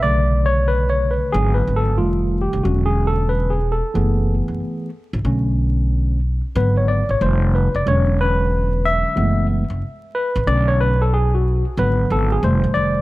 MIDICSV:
0, 0, Header, 1, 3, 480
1, 0, Start_track
1, 0, Tempo, 652174
1, 26, Time_signature, 4, 2, 24, 8
1, 9580, End_track
2, 0, Start_track
2, 0, Title_t, "Tine electric piano"
2, 0, Program_c, 0, 4
2, 19, Note_on_c, 0, 74, 114
2, 21, Note_on_c, 0, 50, 55
2, 27, Note_on_c, 0, 57, 52
2, 30, Note_on_c, 0, 49, 61
2, 336, Note_on_c, 0, 73, 104
2, 352, Note_off_c, 0, 74, 0
2, 500, Note_on_c, 0, 71, 97
2, 506, Note_off_c, 0, 73, 0
2, 652, Note_off_c, 0, 71, 0
2, 659, Note_on_c, 0, 73, 90
2, 816, Note_on_c, 0, 71, 82
2, 828, Note_off_c, 0, 73, 0
2, 955, Note_off_c, 0, 50, 0
2, 957, Note_off_c, 0, 57, 0
2, 959, Note_off_c, 0, 49, 0
2, 975, Note_on_c, 0, 68, 99
2, 979, Note_on_c, 0, 50, 59
2, 985, Note_on_c, 0, 54, 56
2, 986, Note_off_c, 0, 71, 0
2, 990, Note_on_c, 0, 59, 60
2, 1136, Note_on_c, 0, 71, 86
2, 1146, Note_off_c, 0, 68, 0
2, 1298, Note_on_c, 0, 69, 89
2, 1306, Note_off_c, 0, 71, 0
2, 1438, Note_off_c, 0, 50, 0
2, 1442, Note_off_c, 0, 54, 0
2, 1444, Note_off_c, 0, 59, 0
2, 1451, Note_off_c, 0, 69, 0
2, 1455, Note_on_c, 0, 65, 81
2, 1459, Note_on_c, 0, 51, 61
2, 1464, Note_on_c, 0, 55, 49
2, 1471, Note_on_c, 0, 57, 57
2, 1778, Note_on_c, 0, 67, 77
2, 1790, Note_off_c, 0, 65, 0
2, 1918, Note_off_c, 0, 51, 0
2, 1921, Note_off_c, 0, 55, 0
2, 1925, Note_off_c, 0, 57, 0
2, 1939, Note_on_c, 0, 66, 87
2, 1940, Note_on_c, 0, 50, 61
2, 1942, Note_on_c, 0, 54, 52
2, 1947, Note_off_c, 0, 67, 0
2, 1947, Note_on_c, 0, 56, 52
2, 1951, Note_on_c, 0, 61, 63
2, 2102, Note_on_c, 0, 68, 87
2, 2108, Note_off_c, 0, 66, 0
2, 2253, Note_off_c, 0, 68, 0
2, 2261, Note_on_c, 0, 69, 90
2, 2422, Note_on_c, 0, 71, 90
2, 2429, Note_off_c, 0, 69, 0
2, 2577, Note_on_c, 0, 68, 75
2, 2589, Note_off_c, 0, 71, 0
2, 2634, Note_off_c, 0, 50, 0
2, 2635, Note_off_c, 0, 54, 0
2, 2638, Note_off_c, 0, 56, 0
2, 2639, Note_off_c, 0, 61, 0
2, 2736, Note_on_c, 0, 69, 77
2, 2747, Note_off_c, 0, 68, 0
2, 2900, Note_on_c, 0, 52, 58
2, 2903, Note_on_c, 0, 68, 51
2, 2905, Note_on_c, 0, 57, 55
2, 2908, Note_on_c, 0, 59, 66
2, 3192, Note_off_c, 0, 69, 0
2, 3594, Note_off_c, 0, 52, 0
2, 3595, Note_off_c, 0, 68, 0
2, 3596, Note_off_c, 0, 57, 0
2, 3598, Note_off_c, 0, 59, 0
2, 3859, Note_on_c, 0, 50, 57
2, 3864, Note_on_c, 0, 57, 53
2, 3871, Note_on_c, 0, 61, 66
2, 4553, Note_off_c, 0, 50, 0
2, 4556, Note_off_c, 0, 57, 0
2, 4559, Note_off_c, 0, 61, 0
2, 4826, Note_on_c, 0, 50, 58
2, 4827, Note_on_c, 0, 54, 54
2, 4831, Note_on_c, 0, 59, 67
2, 4832, Note_on_c, 0, 71, 86
2, 4971, Note_off_c, 0, 71, 0
2, 4986, Note_on_c, 0, 73, 75
2, 5065, Note_on_c, 0, 74, 92
2, 5072, Note_off_c, 0, 73, 0
2, 5170, Note_off_c, 0, 50, 0
2, 5171, Note_off_c, 0, 54, 0
2, 5173, Note_off_c, 0, 59, 0
2, 5223, Note_off_c, 0, 74, 0
2, 5230, Note_on_c, 0, 73, 81
2, 5302, Note_on_c, 0, 51, 57
2, 5304, Note_on_c, 0, 55, 52
2, 5309, Note_on_c, 0, 57, 64
2, 5315, Note_off_c, 0, 73, 0
2, 5315, Note_on_c, 0, 72, 88
2, 5555, Note_on_c, 0, 71, 84
2, 5558, Note_off_c, 0, 72, 0
2, 5648, Note_off_c, 0, 51, 0
2, 5649, Note_off_c, 0, 55, 0
2, 5651, Note_off_c, 0, 57, 0
2, 5708, Note_off_c, 0, 71, 0
2, 5709, Note_on_c, 0, 74, 93
2, 5782, Note_on_c, 0, 50, 59
2, 5785, Note_on_c, 0, 54, 54
2, 5788, Note_on_c, 0, 56, 56
2, 5792, Note_on_c, 0, 61, 62
2, 5794, Note_off_c, 0, 74, 0
2, 5800, Note_on_c, 0, 73, 95
2, 6017, Note_off_c, 0, 73, 0
2, 6041, Note_on_c, 0, 71, 101
2, 6517, Note_on_c, 0, 76, 101
2, 6528, Note_off_c, 0, 71, 0
2, 6715, Note_off_c, 0, 50, 0
2, 6717, Note_off_c, 0, 54, 0
2, 6718, Note_off_c, 0, 56, 0
2, 6720, Note_off_c, 0, 61, 0
2, 6738, Note_on_c, 0, 52, 61
2, 6744, Note_on_c, 0, 56, 55
2, 6747, Note_on_c, 0, 57, 57
2, 6751, Note_on_c, 0, 59, 65
2, 6962, Note_off_c, 0, 76, 0
2, 7086, Note_off_c, 0, 52, 0
2, 7089, Note_off_c, 0, 56, 0
2, 7091, Note_off_c, 0, 57, 0
2, 7093, Note_off_c, 0, 59, 0
2, 7470, Note_on_c, 0, 71, 103
2, 7702, Note_on_c, 0, 50, 63
2, 7708, Note_on_c, 0, 57, 53
2, 7708, Note_on_c, 0, 74, 116
2, 7709, Note_on_c, 0, 61, 66
2, 7715, Note_off_c, 0, 71, 0
2, 7860, Note_on_c, 0, 73, 107
2, 7864, Note_off_c, 0, 74, 0
2, 7950, Note_off_c, 0, 73, 0
2, 7953, Note_on_c, 0, 71, 112
2, 8048, Note_off_c, 0, 50, 0
2, 8051, Note_off_c, 0, 57, 0
2, 8052, Note_off_c, 0, 61, 0
2, 8107, Note_off_c, 0, 71, 0
2, 8108, Note_on_c, 0, 69, 90
2, 8194, Note_off_c, 0, 69, 0
2, 8196, Note_on_c, 0, 68, 90
2, 8348, Note_off_c, 0, 68, 0
2, 8349, Note_on_c, 0, 66, 79
2, 8568, Note_off_c, 0, 66, 0
2, 8666, Note_on_c, 0, 50, 63
2, 8675, Note_on_c, 0, 54, 54
2, 8677, Note_on_c, 0, 71, 106
2, 8678, Note_on_c, 0, 59, 71
2, 8918, Note_on_c, 0, 69, 91
2, 8919, Note_off_c, 0, 71, 0
2, 9069, Note_off_c, 0, 69, 0
2, 9069, Note_on_c, 0, 68, 84
2, 9122, Note_off_c, 0, 50, 0
2, 9127, Note_off_c, 0, 54, 0
2, 9128, Note_off_c, 0, 59, 0
2, 9144, Note_on_c, 0, 51, 61
2, 9148, Note_on_c, 0, 55, 60
2, 9150, Note_on_c, 0, 57, 65
2, 9154, Note_off_c, 0, 68, 0
2, 9156, Note_on_c, 0, 72, 84
2, 9377, Note_on_c, 0, 74, 116
2, 9580, Note_off_c, 0, 51, 0
2, 9580, Note_off_c, 0, 55, 0
2, 9580, Note_off_c, 0, 57, 0
2, 9580, Note_off_c, 0, 72, 0
2, 9580, Note_off_c, 0, 74, 0
2, 9580, End_track
3, 0, Start_track
3, 0, Title_t, "Upright bass"
3, 0, Program_c, 1, 32
3, 34, Note_on_c, 1, 35, 95
3, 873, Note_off_c, 1, 35, 0
3, 989, Note_on_c, 1, 32, 102
3, 1203, Note_off_c, 1, 32, 0
3, 1232, Note_on_c, 1, 32, 92
3, 1466, Note_off_c, 1, 32, 0
3, 1466, Note_on_c, 1, 29, 91
3, 1818, Note_off_c, 1, 29, 0
3, 1862, Note_on_c, 1, 29, 95
3, 1939, Note_off_c, 1, 29, 0
3, 1951, Note_on_c, 1, 28, 102
3, 2792, Note_off_c, 1, 28, 0
3, 2908, Note_on_c, 1, 30, 96
3, 3259, Note_off_c, 1, 30, 0
3, 3298, Note_on_c, 1, 30, 77
3, 3377, Note_off_c, 1, 30, 0
3, 3778, Note_on_c, 1, 33, 96
3, 3857, Note_off_c, 1, 33, 0
3, 3862, Note_on_c, 1, 35, 102
3, 4707, Note_off_c, 1, 35, 0
3, 4825, Note_on_c, 1, 32, 111
3, 5177, Note_off_c, 1, 32, 0
3, 5219, Note_on_c, 1, 32, 85
3, 5298, Note_off_c, 1, 32, 0
3, 5307, Note_on_c, 1, 29, 98
3, 5658, Note_off_c, 1, 29, 0
3, 5701, Note_on_c, 1, 29, 94
3, 5778, Note_off_c, 1, 29, 0
3, 5790, Note_on_c, 1, 28, 109
3, 6631, Note_off_c, 1, 28, 0
3, 6748, Note_on_c, 1, 30, 99
3, 7099, Note_off_c, 1, 30, 0
3, 7139, Note_on_c, 1, 30, 85
3, 7217, Note_off_c, 1, 30, 0
3, 7622, Note_on_c, 1, 33, 101
3, 7699, Note_off_c, 1, 33, 0
3, 7709, Note_on_c, 1, 35, 113
3, 8551, Note_off_c, 1, 35, 0
3, 8666, Note_on_c, 1, 32, 108
3, 8881, Note_off_c, 1, 32, 0
3, 8908, Note_on_c, 1, 32, 91
3, 9122, Note_off_c, 1, 32, 0
3, 9147, Note_on_c, 1, 29, 99
3, 9283, Note_off_c, 1, 29, 0
3, 9301, Note_on_c, 1, 33, 90
3, 9379, Note_off_c, 1, 33, 0
3, 9387, Note_on_c, 1, 29, 83
3, 9580, Note_off_c, 1, 29, 0
3, 9580, End_track
0, 0, End_of_file